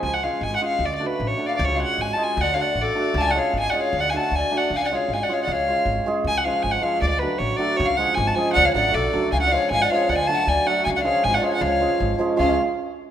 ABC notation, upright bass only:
X:1
M:2/4
L:1/8
Q:1/4=156
K:none
V:1 name="Upright bass" clef=bass
^C,,2 ^G,,, z | D,,2 A,,, z | ^C,,2 ^G,,, z | D,,2 A,,, z |
^C,,2 ^G,,, z | D,,2 D,, z | ^C,,2 ^G,,, z | ^C,,2 ^G,,, z |
^C,,2 ^G,,, z | D,,2 A,,, z | ^C,,2 ^G,,, z | D,, A,,, B,,, ^C,, |
^C,,2 ^G,,, z | D,,2 D,, z | ^C,,2 ^G,,, z | ^C,,2 ^G,,, z |
^C,, z3 |]